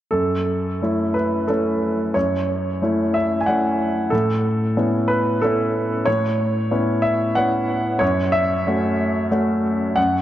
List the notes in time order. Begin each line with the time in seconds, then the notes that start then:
0.11 F#2 A4
0.82 A3 C#4 E4
1.14 B4
1.47 A3 C#4 E4 A4
2.14 F#2 C#5
2.82 A3 C#4 E4
3.14 E5
3.41 G#5
3.46 A3 C#4 E4 F#5
4.10 A2 A4
4.77 B3 C#4 E4
5.08 B4
5.42 B3 C#4 E4 A4
6.06 A2 C#5
6.71 B3 C#4 E4
7.02 E5
7.35 B3 C#4 E4 F#5
7.99 F#2 C#5
8.32 E5
8.67 A3 C#4 F#4
9.31 A3 C#4 F#4
9.96 F#2 F#5